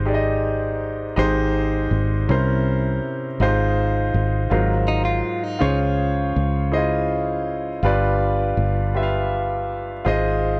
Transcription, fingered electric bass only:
Already playing: G#1
1.17 G#1
1.91 G#1
2.29 C2
3.40 G#1
4.14 G#1
4.51 G#1
5.62 C#2
6.36 C#2
7.83 G1
8.57 G1
10.06 G#1

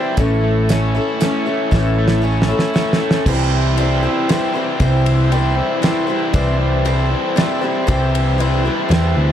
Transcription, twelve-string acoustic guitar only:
Already playing: E3 G3 C4 E4 C5
0.18 A2 E3 A3 C#4 E4 C#5
0.69 A3 C#4 E4 C#5
0.95 A3 C#4 E4 C#5
1.20 A3 C#4 E4 C#5
1.46 A3 C#4 E4 C#5
1.71 A2 E3 A3 C#4 E4 C#5
2.22 A3 C#4 E4 C#5
2.49 A3 C#4 E4 C#5
2.74 A3 C#4 E4 C#5
3.27 C3 E3 G3 C4 E4 C5
3.77 G3 C4 E4 C5
4.03 G3 C4 E4 C5
4.29 G3 C4 E4 C5
4.54 G3 C4 E4 C5
4.80 C3 E3 G3 C4 E4 C5
5.32 G3 C4 E4 C5
5.82 G3 C4 E4 C5
6.07 G3 C4 E4 C5
6.33 C3 E3 G3 C4 E4 C5
6.85 G3 C4 E4 C5
7.36 G3 C4 E4 C5
7.61 G3 C4 E4 C5
7.87 C3 E3 G3 C4 E4 C5
8.38 G3 C4 E4 C5
8.65 G3 C4 E4 C5
8.89 G3 C4 E4 C5

